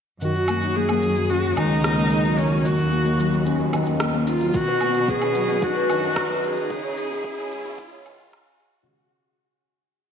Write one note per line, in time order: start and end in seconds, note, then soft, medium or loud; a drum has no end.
0.21 1.50 F#2 medium
0.21 0.29 D#3 medium
0.21 0.77 F#4 medium
0.21 riser medium
0.21 shaker soft
0.35 0.48 F#4 medium
0.35 shaker soft
0.48 0.62 A#3 medium
0.48 low woodblock medium
0.48 shaker medium
0.62 0.75 D#4 medium
0.62 shaker soft
0.75 0.88 A#3 medium
0.75 1.31 G#4 loud
0.75 shaker soft
0.89 1.02 A#3 medium
0.89 low woodblock medium
0.89 shaker soft
1.02 1.15 F#3 medium
1.02 shaker medium
1.16 1.29 F#3 medium
1.16 shaker soft
1.30 1.43 C#4 medium
1.30 1.56 F#4 medium
1.30 shaker soft
1.43 1.56 F#4 medium
1.43 shaker soft
1.57 2.72 C#2 medium
1.57 1.70 D#3 medium
1.57 2.40 D#4 medium
1.57 low woodblock medium
1.57 shaker medium
1.71 1.83 D#4 medium
1.71 shaker soft
1.84 1.96 A#3 medium
1.84 cross-stick medium
1.84 shaker soft
1.98 2.10 A#3 medium
1.98 shaker soft
2.11 2.24 D#4 medium
2.11 shaker medium
2.24 2.37 F#3 medium
2.24 shaker soft
2.38 2.46 D#3 medium
2.38 2.67 C#4 medium
2.38 shaker soft
2.51 2.64 F#4 medium
2.51 shaker soft
2.65 2.78 A#3 medium
2.65 3.46 F#4 medium
2.65 shaker medium
2.79 4.48 D#2 medium
2.79 2.91 D#4 medium
2.79 shaker soft
2.92 3.04 A#3 medium
2.92 shaker soft
3.05 3.18 A#3 medium
3.05 shaker soft
3.19 3.30 F#3 medium
3.19 shaker medium
3.32 3.45 F#3 medium
3.32 shaker soft
3.46 3.59 C#4 medium
3.46 shaker soft
3.59 3.72 F#4 medium
3.59 shaker soft
3.73 3.86 D#3 medium
3.73 low woodblock medium
3.73 shaker medium
3.86 4.00 D#4 medium
3.86 shaker soft
4.00 4.12 A#3 medium
4.00 cross-stick medium
4.00 shaker soft
4.13 4.27 A#3 medium
4.13 shaker soft
4.27 4.40 D#4 medium
4.27 4.57 F4 medium
4.27 shaker medium
4.41 4.54 F#3 medium
4.41 shaker soft
4.54 5.83 B2 loud
4.54 4.62 D#3 medium
4.54 5.11 F#4 loud
4.54 kick medium
4.54 shaker soft
4.67 4.80 B4 medium
4.67 shaker soft
4.81 4.94 B3 medium
4.81 low woodblock medium
4.81 shaker medium
4.94 5.08 F#4 medium
4.94 shaker soft
5.08 5.20 B3 medium
5.08 5.65 G#4 loud
5.08 kick loud
5.08 shaker soft
5.22 5.35 B3 medium
5.22 low woodblock medium
5.22 shaker soft
5.35 5.47 F#3 medium
5.35 shaker medium
5.49 5.62 F#3 medium
5.49 shaker soft
5.62 5.75 D#4 medium
5.62 6.46 F#4 loud
5.62 kick loud
5.62 shaker soft
5.76 5.89 B4 medium
5.76 shaker soft
5.89 6.64 F#2 loud
5.89 6.02 D#3 medium
5.89 low woodblock medium
5.89 shaker medium
6.03 6.16 F#4 medium
6.03 shaker soft
6.16 6.28 B3 medium
6.16 kick loud
6.16 cross-stick medium
6.16 shaker soft
6.30 6.43 B3 medium
6.30 shaker soft
6.43 6.56 F#4 loud
6.43 8.33 G#4 loud
6.43 shaker medium
6.57 6.70 F#3 medium
6.57 shaker soft
6.70 7.04 C#3 loud
6.70 kick medium
6.70 shaker soft
6.84 6.97 C#5 medium
6.84 shaker soft
6.97 7.10 C#4 medium
6.97 shaker medium
7.11 8.80 B2 medium
7.11 7.24 G#4 medium
7.11 shaker soft
7.24 7.36 C#4 medium
7.24 kick loud
7.24 shaker soft
7.38 7.51 C#4 loud
7.38 shaker soft
7.51 7.63 G#3 medium
7.51 shaker medium
7.65 7.78 G#3 medium
7.65 shaker soft
7.78 7.92 D#4 medium
7.78 kick loud
7.78 shaker soft
7.92 8.05 C#5 medium
7.92 shaker soft
8.06 8.18 D#3 loud
8.06 low woodblock medium
8.06 shaker medium
8.19 8.32 G#4 medium
8.19 shaker soft
8.32 8.44 C#4 medium
8.32 kick loud
8.32 cross-stick medium
8.32 shaker soft
8.46 8.59 C#4 loud
8.46 shaker soft
8.59 8.78 C#3 medium
8.59 8.72 G#4 loud
8.59 shaker medium
8.73 8.86 G#3 medium
8.73 shaker soft